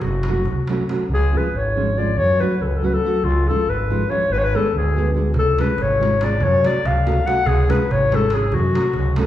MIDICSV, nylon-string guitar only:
0, 0, Header, 1, 2, 480
1, 0, Start_track
1, 0, Key_signature, 3, "minor"
1, 0, Tempo, 424028
1, 48, Time_signature, 5, 3, 24, 8
1, 10489, End_track
2, 0, Start_track
2, 0, Title_t, "Nylon-string guitar"
2, 0, Program_c, 0, 24
2, 307, Note_on_c, 0, 54, 67
2, 317, Note_on_c, 0, 57, 63
2, 325, Note_on_c, 0, 61, 64
2, 332, Note_on_c, 0, 66, 76
2, 452, Note_off_c, 0, 54, 0
2, 458, Note_off_c, 0, 57, 0
2, 460, Note_off_c, 0, 61, 0
2, 465, Note_off_c, 0, 66, 0
2, 780, Note_on_c, 0, 54, 74
2, 787, Note_on_c, 0, 57, 72
2, 794, Note_on_c, 0, 61, 75
2, 801, Note_on_c, 0, 66, 73
2, 928, Note_off_c, 0, 54, 0
2, 932, Note_off_c, 0, 57, 0
2, 936, Note_off_c, 0, 61, 0
2, 939, Note_off_c, 0, 66, 0
2, 1011, Note_on_c, 0, 54, 70
2, 1013, Note_on_c, 0, 57, 60
2, 1022, Note_on_c, 0, 61, 63
2, 1027, Note_on_c, 0, 66, 71
2, 1158, Note_off_c, 0, 54, 0
2, 1159, Note_off_c, 0, 57, 0
2, 1164, Note_off_c, 0, 61, 0
2, 1166, Note_off_c, 0, 66, 0
2, 1504, Note_on_c, 0, 53, 64
2, 1508, Note_on_c, 0, 56, 59
2, 1516, Note_on_c, 0, 61, 64
2, 1520, Note_on_c, 0, 65, 83
2, 1654, Note_off_c, 0, 53, 0
2, 1657, Note_off_c, 0, 56, 0
2, 1659, Note_off_c, 0, 61, 0
2, 1662, Note_off_c, 0, 65, 0
2, 1992, Note_on_c, 0, 53, 56
2, 2000, Note_on_c, 0, 56, 60
2, 2005, Note_on_c, 0, 61, 65
2, 2010, Note_on_c, 0, 65, 65
2, 2137, Note_off_c, 0, 53, 0
2, 2141, Note_off_c, 0, 56, 0
2, 2144, Note_off_c, 0, 61, 0
2, 2145, Note_off_c, 0, 65, 0
2, 2230, Note_on_c, 0, 53, 55
2, 2232, Note_on_c, 0, 56, 53
2, 2248, Note_on_c, 0, 61, 59
2, 2256, Note_on_c, 0, 65, 66
2, 2371, Note_off_c, 0, 53, 0
2, 2371, Note_off_c, 0, 56, 0
2, 2379, Note_off_c, 0, 61, 0
2, 2383, Note_off_c, 0, 65, 0
2, 2722, Note_on_c, 0, 54, 76
2, 2727, Note_on_c, 0, 57, 62
2, 2731, Note_on_c, 0, 61, 69
2, 2744, Note_on_c, 0, 66, 65
2, 2865, Note_off_c, 0, 54, 0
2, 2866, Note_off_c, 0, 57, 0
2, 2869, Note_off_c, 0, 61, 0
2, 2876, Note_off_c, 0, 66, 0
2, 3193, Note_on_c, 0, 54, 64
2, 3203, Note_on_c, 0, 57, 52
2, 3207, Note_on_c, 0, 61, 52
2, 3215, Note_on_c, 0, 66, 84
2, 3339, Note_off_c, 0, 54, 0
2, 3344, Note_off_c, 0, 57, 0
2, 3347, Note_off_c, 0, 61, 0
2, 3348, Note_off_c, 0, 66, 0
2, 3448, Note_on_c, 0, 54, 58
2, 3453, Note_on_c, 0, 57, 58
2, 3461, Note_on_c, 0, 61, 49
2, 3467, Note_on_c, 0, 66, 80
2, 3580, Note_off_c, 0, 54, 0
2, 3582, Note_off_c, 0, 57, 0
2, 3587, Note_off_c, 0, 61, 0
2, 3588, Note_off_c, 0, 66, 0
2, 3948, Note_on_c, 0, 53, 71
2, 3956, Note_on_c, 0, 56, 68
2, 3958, Note_on_c, 0, 61, 60
2, 3968, Note_on_c, 0, 65, 80
2, 4078, Note_off_c, 0, 53, 0
2, 4080, Note_off_c, 0, 56, 0
2, 4083, Note_off_c, 0, 61, 0
2, 4088, Note_off_c, 0, 65, 0
2, 4417, Note_on_c, 0, 56, 62
2, 4418, Note_on_c, 0, 53, 69
2, 4425, Note_on_c, 0, 61, 52
2, 4431, Note_on_c, 0, 65, 72
2, 4549, Note_off_c, 0, 56, 0
2, 4551, Note_off_c, 0, 53, 0
2, 4555, Note_off_c, 0, 61, 0
2, 4557, Note_off_c, 0, 65, 0
2, 4628, Note_on_c, 0, 53, 59
2, 4639, Note_on_c, 0, 56, 65
2, 4644, Note_on_c, 0, 61, 52
2, 4655, Note_on_c, 0, 65, 79
2, 4769, Note_off_c, 0, 53, 0
2, 4775, Note_off_c, 0, 56, 0
2, 4777, Note_off_c, 0, 61, 0
2, 4783, Note_off_c, 0, 65, 0
2, 5142, Note_on_c, 0, 56, 70
2, 5146, Note_on_c, 0, 59, 69
2, 5152, Note_on_c, 0, 62, 75
2, 5159, Note_on_c, 0, 68, 77
2, 5275, Note_off_c, 0, 56, 0
2, 5275, Note_off_c, 0, 59, 0
2, 5279, Note_off_c, 0, 62, 0
2, 5283, Note_off_c, 0, 68, 0
2, 5616, Note_on_c, 0, 56, 64
2, 5623, Note_on_c, 0, 59, 65
2, 5634, Note_on_c, 0, 62, 57
2, 5637, Note_on_c, 0, 68, 74
2, 5749, Note_off_c, 0, 56, 0
2, 5751, Note_off_c, 0, 59, 0
2, 5758, Note_off_c, 0, 68, 0
2, 5759, Note_off_c, 0, 62, 0
2, 5824, Note_on_c, 0, 56, 61
2, 5834, Note_on_c, 0, 59, 52
2, 5841, Note_on_c, 0, 62, 54
2, 5852, Note_on_c, 0, 68, 61
2, 5967, Note_off_c, 0, 56, 0
2, 5971, Note_off_c, 0, 59, 0
2, 5975, Note_off_c, 0, 62, 0
2, 5980, Note_off_c, 0, 68, 0
2, 6333, Note_on_c, 0, 56, 65
2, 6334, Note_on_c, 0, 61, 68
2, 6341, Note_on_c, 0, 65, 63
2, 6347, Note_on_c, 0, 68, 69
2, 6468, Note_off_c, 0, 61, 0
2, 6469, Note_off_c, 0, 56, 0
2, 6473, Note_off_c, 0, 65, 0
2, 6474, Note_off_c, 0, 68, 0
2, 6793, Note_on_c, 0, 56, 68
2, 6806, Note_on_c, 0, 61, 63
2, 6812, Note_on_c, 0, 65, 63
2, 6814, Note_on_c, 0, 68, 64
2, 6936, Note_off_c, 0, 56, 0
2, 6943, Note_off_c, 0, 61, 0
2, 6944, Note_off_c, 0, 65, 0
2, 6946, Note_off_c, 0, 68, 0
2, 7029, Note_on_c, 0, 56, 58
2, 7035, Note_on_c, 0, 61, 60
2, 7044, Note_on_c, 0, 65, 58
2, 7053, Note_on_c, 0, 68, 75
2, 7168, Note_off_c, 0, 56, 0
2, 7169, Note_off_c, 0, 61, 0
2, 7175, Note_off_c, 0, 65, 0
2, 7179, Note_off_c, 0, 68, 0
2, 7525, Note_on_c, 0, 61, 67
2, 7527, Note_on_c, 0, 57, 71
2, 7533, Note_on_c, 0, 66, 60
2, 7546, Note_on_c, 0, 69, 78
2, 7662, Note_off_c, 0, 61, 0
2, 7664, Note_off_c, 0, 57, 0
2, 7667, Note_off_c, 0, 66, 0
2, 7673, Note_off_c, 0, 69, 0
2, 7991, Note_on_c, 0, 57, 61
2, 7998, Note_on_c, 0, 61, 66
2, 8002, Note_on_c, 0, 66, 64
2, 8011, Note_on_c, 0, 69, 77
2, 8133, Note_off_c, 0, 57, 0
2, 8137, Note_off_c, 0, 61, 0
2, 8137, Note_off_c, 0, 66, 0
2, 8143, Note_off_c, 0, 69, 0
2, 8218, Note_on_c, 0, 57, 62
2, 8224, Note_on_c, 0, 61, 67
2, 8237, Note_on_c, 0, 66, 63
2, 8243, Note_on_c, 0, 69, 65
2, 8361, Note_off_c, 0, 57, 0
2, 8361, Note_off_c, 0, 61, 0
2, 8370, Note_off_c, 0, 66, 0
2, 8370, Note_off_c, 0, 69, 0
2, 8702, Note_on_c, 0, 56, 71
2, 8708, Note_on_c, 0, 61, 69
2, 8715, Note_on_c, 0, 65, 65
2, 8721, Note_on_c, 0, 68, 82
2, 8849, Note_off_c, 0, 56, 0
2, 8852, Note_off_c, 0, 61, 0
2, 8856, Note_off_c, 0, 65, 0
2, 8859, Note_off_c, 0, 68, 0
2, 9192, Note_on_c, 0, 56, 76
2, 9202, Note_on_c, 0, 61, 60
2, 9204, Note_on_c, 0, 65, 58
2, 9209, Note_on_c, 0, 68, 84
2, 9331, Note_off_c, 0, 56, 0
2, 9337, Note_off_c, 0, 61, 0
2, 9337, Note_off_c, 0, 65, 0
2, 9340, Note_off_c, 0, 68, 0
2, 9409, Note_on_c, 0, 56, 67
2, 9414, Note_on_c, 0, 61, 52
2, 9431, Note_on_c, 0, 65, 49
2, 9434, Note_on_c, 0, 68, 80
2, 9553, Note_off_c, 0, 56, 0
2, 9555, Note_off_c, 0, 61, 0
2, 9564, Note_off_c, 0, 65, 0
2, 9565, Note_off_c, 0, 68, 0
2, 9898, Note_on_c, 0, 57, 81
2, 9903, Note_on_c, 0, 61, 59
2, 9912, Note_on_c, 0, 66, 64
2, 9912, Note_on_c, 0, 69, 65
2, 10046, Note_off_c, 0, 57, 0
2, 10047, Note_off_c, 0, 61, 0
2, 10052, Note_off_c, 0, 69, 0
2, 10053, Note_off_c, 0, 66, 0
2, 10379, Note_on_c, 0, 57, 86
2, 10392, Note_on_c, 0, 61, 78
2, 10402, Note_on_c, 0, 66, 74
2, 10410, Note_on_c, 0, 69, 82
2, 10489, Note_off_c, 0, 57, 0
2, 10489, Note_off_c, 0, 61, 0
2, 10489, Note_off_c, 0, 66, 0
2, 10489, Note_off_c, 0, 69, 0
2, 10489, End_track
0, 0, End_of_file